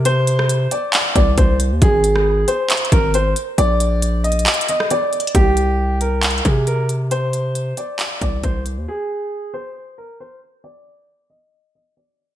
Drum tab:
HH |x-----x-----x-----x-----x-----x-----x-----x-----|x-----x-----------x-----x-x-x-x-----x-----x-----|x-----x-----x-----x-x-x-x-x-x-x-----x-----x-x-x-|x-----x-----------x-----x-x-x-x-----x-----x-----|
CP |------------------------x-----------------------|------------------------x-----------------------|------------------------x-----------------------|------------------------x-----------------------|
SD |---------r--------------------------------------|---------r--------------------------------------|---------------------------------r--------------|------------------------------------------------|
BD |------------------------------o-----o-----------|o-----------------------------o-----------------|------------------------------------------------|o-----------------------------o-----------------|

HH |x-----x-----x-----x-----x-----x-----x-----x-----|------------------------------------------------|------------------------------------------------|
CP |------------------------x-----------------------|------------------------------------------------|------------------------------------------------|
SD |------------------------------------------------|------------------------------------------------|------------------------------------------------|
BD |------------------------------o-----o-----------|------------------------------------------------|------------------------------------------------|